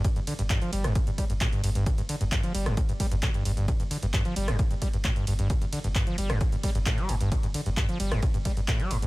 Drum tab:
RD |x-x-x-x-x-x-x-x-|x-x-x-x-x-x-x-x-|x-x-x-x-x-x-x-x-|x-x-x-x-x-x-x-x-|
HH |xxoxxxoxxxoxxxox|xxoxxxoxxxoxxxox|xxoxxxoxxxoxxxox|xxoxxxoxxxoxxxox|
CP |----x-------x---|----x-------x---|----x-------x---|----x-------x---|
SD |-------r--------|-------r--------|-------r--------|-------r--------|
BD |o---o---o-o-o---|o---o---o-o-o---|o---o---o-o-o---|o---o---o-o-o---|

RD |x-x-x-x-x-x-x-x-|
HH |xxoxxxoxxxoxxxox|
CP |----x-------x---|
SD |-------r--------|
BD |o---o---o-o-o---|